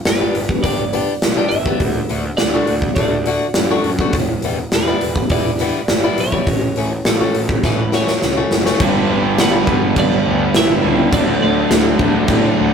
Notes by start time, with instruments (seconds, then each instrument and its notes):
0.05 picked electric bass G1, clean electric guitar B4, snare, open hi-hat
0.20 steel-string acoustic guitar G3 B3 D4 G4
0.35 picked electric bass G1, open hi-hat
0.49 kick
0.63 picked electric bass G1, steel-string acoustic guitar G3 B3 D4 G4, clean electric guitar D5, kick, open hi-hat
0.93 steel-string acoustic guitar G3 B3 D4 G4, open hi-hat
1.22 picked electric bass B1, snare, open hi-hat
1.37 steel-string acoustic guitar G3 B3 D4 G4
1.49 picked electric bass G1, clean electric guitar E5, open hi-hat
1.66 steel-string acoustic guitar G3 B3 D4 G4, kick
1.80 picked electric bass D2, kick, open hi-hat
2.09 picked electric bass D2, steel-string acoustic guitar D3 A3 D4 F#4, open hi-hat
2.25 muted steel-string acoustic guitar stroke
2.37 picked electric bass D2, clean electric guitar D5, snare, open hi-hat
2.54 steel-string acoustic guitar D3 A3 D4 F#4
2.67 picked electric bass D2, open hi-hat
2.82 kick
2.95 picked electric bass D2, steel-string acoustic guitar D3 A3 D4 F#4, clean electric guitar D5, kick, open hi-hat
3.26 steel-string acoustic guitar D3 A3 D4 F#4, open hi-hat
3.54 picked electric bass F#2, snare, open hi-hat
3.71 steel-string acoustic guitar D3 A3 D4 F#4
3.84 picked electric bass F#2, open hi-hat
3.99 steel-string acoustic guitar D3 A3 D4 F#4, kick
4.13 picked electric bass E1, kick, open hi-hat
4.42 picked electric bass E1, steel-string acoustic guitar E3 G3 B3 E4, open hi-hat
4.58 muted steel-string acoustic guitar stroke
4.72 picked electric bass E1, clean electric guitar B4, snare, open hi-hat
4.87 steel-string acoustic guitar E3 G3 B3 E4
5.01 picked electric bass E1, open hi-hat
5.16 kick
5.30 picked electric bass E1, steel-string acoustic guitar E3 G3 B3 E4, clean electric guitar D5, kick, open hi-hat
5.59 steel-string acoustic guitar E3 G3 B3 E4, snare, open hi-hat
5.88 picked electric bass G1, snare, open hi-hat
6.04 steel-string acoustic guitar E3 G3 B3 E4
6.18 picked electric bass B1, clean electric guitar C#5, open hi-hat
6.32 steel-string acoustic guitar E3 G3 B3 E4, kick
6.47 picked electric bass A1, kick, open hi-hat
6.76 picked electric bass A1, steel-string acoustic guitar E3 A3 C#4 F#4, open hi-hat
6.92 muted steel-string acoustic guitar stroke
7.05 picked electric bass A1, clean electric guitar A4, snare, open hi-hat
7.20 steel-string acoustic guitar E3 A3 C#4 F#4
7.35 picked electric bass A1, open hi-hat
7.49 kick
7.63 picked electric bass A1, steel-string acoustic guitar E3 A3 C#4 F#4, clean electric guitar B4, kick, snare
7.92 steel-string acoustic guitar E3 A3 C#4 F#4, clean electric guitar C#5, snare
8.08 snare
8.22 picked electric bass C#2, snare
8.36 steel-string acoustic guitar E3 A3 C#4 F#4
8.51 picked electric bass F#1, snare
8.65 steel-string acoustic guitar E3 A3 C#4 F#4, snare
8.80 picked electric bass G1, overdriven electric guitar G2 D3 G3 B3 D4, tonewheel organ D4 B4 G5 B5, kick, crash
9.10 picked electric bass G1, overdriven electric guitar G2 D3 G3 B3 D4
9.38 picked electric bass G1, overdriven electric guitar G2 D3 G3 B3 D4, clean electric guitar B3 B4, snare, crash
9.67 picked electric bass G1, overdriven electric guitar G2 D3 G3 B3 D4, kick
9.96 picked electric bass B1, overdriven electric guitar G2 D3 G3 B3 D4, clean electric guitar D4 D5, kick, crash
10.26 picked electric bass D2, overdriven electric guitar G2 D3 G3 B3 D4
10.54 picked electric bass G1, overdriven electric guitar G2 D3 G3 B3 D4, clean electric guitar E4 E5, snare, crash
10.83 picked electric bass C#2, overdriven electric guitar G2 D3 G3 B3 D4
11.12 picked electric bass D2, overdriven electric guitar D3 F#3 A3 D4, clean electric guitar D4 D5, tonewheel organ A4 F#5 A5, kick, crash
11.41 picked electric bass D2, overdriven electric guitar D3 F#3 A3 D4, clean electric guitar D4 D5
11.70 picked electric bass D2, overdriven electric guitar D3 F#3 A3 D4, snare, crash
11.99 picked electric bass D2, overdriven electric guitar D3 F#3 A3 D4, kick
12.28 picked electric bass A2, overdriven electric guitar D3 F#3 A3 D4, kick, crash
12.58 picked electric bass D2, overdriven electric guitar D3 F#3 A3 D4